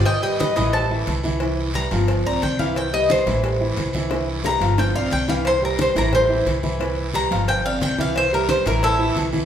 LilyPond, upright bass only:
\new Staff \with { instrumentName = "Upright bass" } { \clef bass \time 4/4 \key c \major \tempo 4 = 178 r4. a,,4. c,4~ | c,4. g,,4 b,,8 c,4~ | c,4. a,,4. c,4~ | c,4. g,,4 b,,8 c,4~ |
c,4. a,,4. c,4~ | c,4. g,,4. c,4~ | c,4. a,,4. c,4 | }